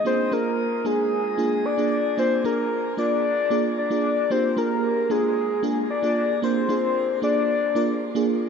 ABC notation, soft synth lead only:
X:1
M:4/4
L:1/8
Q:1/4=113
K:Bbmix
V:1 name="Soft synth lead"
c B2 A3 d2 | c B2 d3 d2 | c B2 A3 d2 | c3 d4 z |]